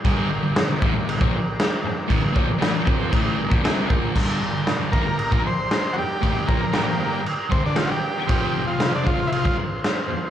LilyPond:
<<
  \new Staff \with { instrumentName = "Transistor combo organ" } { \time 4/4 \key g \minor \tempo 4 = 116 <g' bes' d''>1~ | <g' bes' d''>1 | <g' bes' d''>1~ | <g' bes' d''>1 |
<c' f' c''>1 | }
  \new Staff \with { instrumentName = "Transistor combo organ" } { \time 4/4 \key g \minor r1 | r1 | r4. bes'4 c''4 <fis' g'>8~ | <fis' g'>8 bes'8 <bes g'>4 r8 c'16 d'16 f'16 <fis' g'>8.~ |
<fis' g'>8. f'8 d'16 f'8 <e' f'>8 r4. | }
  \new Staff \with { instrumentName = "Distorted electric guitar" } { \clef bass \time 4/4 \key g \minor <g, d g>8 <g, d>16 <g, d>16 r16 <g, d>16 <a, e>16 <g, d>8 <bes, f>16 r4. | <a, e>16 <g, d>16 <bes, f>16 r16 <a, e>16 r16 <f c' f'>8 <a, e a>8 <g, d>16 <bes, f>16 <c g c'>8 <bes, f bes>8 | <g, d g>8 <g, d>16 <g, d>16 r16 <g, d>16 <a, e>16 <g, d>8 <bes, f>16 r4. | <a, e>16 <g, d>16 <bes, f>16 r16 <a, e>16 r16 <g, d>8 r8 <g, d>16 <g, d>16 <g, d>16 r8. |
<f, c f>8 <f, c>16 <f, c>16 r16 <f, c>16 <g, d>16 <f, c>8 <g, d>16 r4. | }
  \new DrumStaff \with { instrumentName = "Drums" } \drummode { \time 4/4 <cymc bd>4 <cymc sn>8 bd8 cymc16 bd8. <cymc sn>4 | <cymc bd>8 bd8 <cymc sn>8 bd8 <cymc bd>8. bd16 <cymc sn>8 bd8 | <cymc bd>4 <cymc sn>8 bd8 cymc16 bd8. <cymc sn>4 | <cymc bd>8 bd8 <cymc sn>4 cymc8 bd8 <cymc sn>4 |
<cymc bd>4 <cymc sn>8 bd8 cymc16 bd8. <cymc sn>4 | }
>>